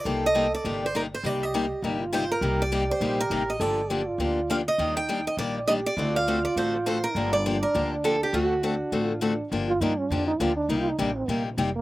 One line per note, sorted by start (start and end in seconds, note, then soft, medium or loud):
0.00 0.25 D5 medium
0.05 0.53 C2 medium
0.05 0.25 C3 medium
0.05 0.25 G3 medium
0.05 0.25 A#3 medium
0.05 0.25 D#4 medium
0.05 0.25 G4 medium
0.05 0.93 A4 medium
0.26 0.54 D#5 medium
0.35 0.46 C3 medium
0.35 0.46 G3 medium
0.35 0.46 A#3 medium
0.35 0.46 D#4 medium
0.35 0.46 G4 medium
0.54 0.81 D5 medium
0.65 1.12 G1 medium
0.65 0.84 C3 medium
0.65 0.84 G3 medium
0.65 0.84 A#3 medium
0.65 0.85 D#4 medium
0.65 0.85 G4 medium
0.86 0.95 C5 medium
0.95 1.05 C3 medium
0.95 1.05 G3 medium
0.95 1.05 A#3 medium
0.95 1.05 D#4 loud
0.95 1.05 G4 medium
0.95 1.01 A#4 medium
1.14 1.26 C5 medium
1.24 1.71 C2 medium
1.24 1.43 C3 medium
1.24 1.44 G3 medium
1.24 1.44 A#3 medium
1.24 1.44 D#4 medium
1.24 1.85 G4 medium
1.24 1.44 G4 medium
1.24 1.43 D5 loud
1.43 1.84 D#5 medium
1.54 1.64 C3 medium
1.54 1.65 G3 medium
1.54 1.65 A#3 medium
1.54 1.65 D#4 medium
1.54 1.65 G4 medium
1.82 2.30 G1 medium
1.82 2.03 C3 medium
1.82 2.03 G3 medium
1.82 2.03 A#3 medium
1.82 2.03 D#4 medium
1.82 2.03 G4 medium
2.01 2.43 F4 medium
2.13 2.23 C3 medium
2.13 2.23 G3 medium
2.13 2.23 A#3 medium
2.13 2.24 D#4 medium
2.13 2.24 G4 loud
2.13 2.30 C5 medium
2.31 2.61 A#4 medium
2.41 2.89 C2 medium
2.41 2.62 C3 medium
2.41 2.62 G3 medium
2.41 2.62 A#3 medium
2.41 2.62 D#4 medium
2.41 3.59 G4 medium
2.41 2.62 G4 medium
2.62 2.91 D5 medium
2.72 2.83 C3 medium
2.72 2.83 G3 medium
2.72 2.83 A#3 medium
2.72 2.83 D#4 medium
2.72 2.83 G4 medium
2.91 3.18 C5 medium
3.01 3.26 A#1 medium
3.01 3.21 C3 medium
3.01 3.21 G3 medium
3.01 3.21 A#3 medium
3.01 3.21 D#4 medium
3.01 3.21 G4 medium
3.20 3.50 A#4 medium
3.30 3.56 A1 medium
3.30 3.42 C3 medium
3.30 3.42 G3 medium
3.30 3.42 A#3 medium
3.30 3.42 D#4 medium
3.30 3.42 G4 medium
3.50 3.61 D#5 medium
3.60 4.07 G1 medium
3.60 3.80 D3 medium
3.60 3.80 F3 medium
3.60 3.80 A#3 medium
3.60 3.80 D4 medium
3.60 3.80 G4 medium
3.60 3.91 A4 loud
3.60 4.50 D5 medium
3.90 4.01 D3 medium
3.90 4.01 F3 medium
3.90 4.01 A#3 medium
3.90 4.01 D4 medium
3.90 4.09 G4 medium
3.90 4.01 G4 medium
4.07 4.67 F4 medium
4.18 4.66 D2 medium
4.18 4.39 D3 medium
4.18 4.39 F3 medium
4.18 4.39 A#3 medium
4.18 4.39 D4 medium
4.18 4.39 G4 medium
4.50 4.60 D3 medium
4.50 4.60 F3 medium
4.50 4.61 A#3 medium
4.50 4.61 D4 medium
4.50 4.61 G4 medium
4.50 4.56 F5 medium
4.68 4.96 D#5 medium
4.78 5.26 D#2 medium
4.78 4.98 D#3 medium
4.78 4.98 G3 medium
4.78 4.98 A#3 medium
4.78 4.98 D4 medium
4.78 5.37 D#4 medium
4.78 4.99 G4 medium
4.97 5.24 G5 loud
5.09 5.19 D#3 medium
5.09 5.19 G3 medium
5.09 5.20 A#3 medium
5.09 5.19 D4 medium
5.09 5.20 G4 medium
5.27 5.38 D#5 medium
5.37 5.85 A#1 medium
5.37 5.58 D#3 medium
5.37 5.58 G3 medium
5.37 5.58 A#3 medium
5.37 5.58 D4 medium
5.37 5.58 G4 medium
5.37 5.54 D5 medium
5.67 5.79 D#3 medium
5.67 5.79 G3 medium
5.67 5.79 A#3 loud
5.67 5.79 D4 medium
5.67 5.95 G4 medium
5.67 5.79 G4 medium
5.67 5.72 D#5 medium
5.86 6.16 D5 medium
5.97 6.44 D2 medium
5.97 6.17 D3 medium
5.97 6.17 A3 medium
5.97 6.17 C4 medium
5.97 7.17 F4 loud
5.97 6.17 F#4 medium
5.97 6.17 A4 medium
6.16 6.44 F5 loud
6.28 6.38 D3 medium
6.28 6.38 A3 medium
6.28 6.38 C4 medium
6.28 6.38 F#4 medium
6.28 6.38 A4 medium
6.45 6.56 D5 medium
6.56 7.03 A1 medium
6.56 6.76 D3 medium
6.56 6.76 A3 medium
6.56 6.76 C4 medium
6.56 6.76 F#4 medium
6.56 6.76 A4 medium
6.56 6.73 C5 medium
6.86 6.97 D3 medium
6.86 6.97 A3 medium
6.86 6.97 C4 medium
6.86 6.97 F#4 loud
6.86 6.97 A4 medium
6.86 7.04 C5 medium
7.04 7.31 A#4 medium
7.15 7.62 G1 medium
7.15 7.35 D3 medium
7.15 7.35 F3 medium
7.15 7.35 A#3 medium
7.15 8.33 D4 medium
7.15 7.35 D4 medium
7.15 7.35 G4 medium
7.33 7.60 D5 medium
7.46 7.56 D3 medium
7.46 7.56 F3 medium
7.46 7.56 A#3 medium
7.46 7.56 D4 medium
7.46 7.56 G4 medium
7.63 7.90 A#4 medium
7.74 8.22 D2 medium
7.74 7.94 D3 medium
7.74 7.94 F3 medium
7.74 7.94 A#3 medium
7.74 7.94 D4 medium
7.74 7.94 G4 medium
8.04 8.15 D3 medium
8.04 8.15 F3 medium
8.04 8.15 A#3 loud
8.04 8.15 D4 medium
8.04 8.15 G4 medium
8.04 8.22 A4 medium
8.23 8.34 G4 medium
8.33 8.80 D2 medium
8.33 8.53 D3 medium
8.33 8.53 A3 medium
8.33 8.53 C4 medium
8.33 9.02 F#4 medium
8.33 8.53 F#4 medium
8.33 8.65 F#4 medium
8.33 8.53 A4 medium
8.63 8.74 D3 medium
8.63 8.74 A3 medium
8.63 8.74 C4 medium
8.63 9.21 D4 medium
8.63 8.74 F#4 medium
8.63 8.74 A4 medium
8.92 9.39 A1 medium
8.92 9.12 D3 medium
8.92 9.12 A3 medium
8.92 9.12 C4 medium
8.92 9.12 F#4 medium
8.92 9.12 A4 medium
9.02 9.36 F4 medium
9.21 9.32 D3 medium
9.21 9.32 A3 medium
9.21 9.33 C4 medium
9.21 9.49 D4 medium
9.21 9.33 F#4 medium
9.21 9.33 A4 medium
9.52 9.80 G1 medium
9.52 9.71 D3 medium
9.52 9.71 F3 medium
9.52 9.71 A#3 medium
9.52 9.71 D4 medium
9.52 9.71 G4 medium
9.68 9.82 F4 medium
9.81 10.10 G2 medium
9.81 9.92 D3 medium
9.81 9.92 F3 medium
9.81 9.92 A#3 medium
9.81 9.92 D4 medium
9.81 10.00 D#4 medium
9.81 9.92 G4 medium
9.98 10.12 C#4 medium
10.10 10.39 F2 medium
10.10 10.30 D3 medium
10.10 10.30 F3 medium
10.10 10.30 A#3 medium
10.10 10.27 D4 medium
10.10 10.31 D4 medium
10.10 10.31 G4 medium
10.27 10.41 D#4 medium
10.40 10.68 D2 medium
10.40 10.51 D3 medium
10.40 10.51 F3 medium
10.40 10.51 A#3 medium
10.40 10.51 D4 medium
10.40 10.56 F4 medium
10.40 10.51 G4 medium
10.56 10.71 D4 medium
10.69 10.98 C2 medium
10.69 10.89 C3 medium
10.69 10.89 G3 medium
10.69 10.89 A#3 medium
10.69 10.82 D#4 medium
10.69 10.89 D#4 medium
10.69 10.89 G4 medium
10.80 10.91 F4 medium
10.89 11.01 D#4 medium
10.99 11.27 A1 medium
10.99 11.09 C3 medium
10.99 11.10 G3 medium
10.99 11.10 A#3 medium
10.99 11.17 D4 medium
10.99 11.10 D#4 medium
10.99 11.10 G4 medium
11.16 11.29 C4 medium
11.28 11.57 A#1 medium
11.28 11.48 C3 medium
11.28 11.48 G3 medium
11.28 11.46 A#3 medium
11.28 11.48 A#3 medium
11.28 11.48 D#4 medium
11.28 11.48 G4 medium
11.47 11.59 D3 soft
11.58 11.81 F1 medium
11.58 11.68 C3 medium
11.58 11.75 G3 medium
11.58 11.69 G3 medium
11.58 11.69 A#3 medium
11.58 11.69 D#4 medium
11.58 11.69 G4 medium
11.76 11.81 A#3 loud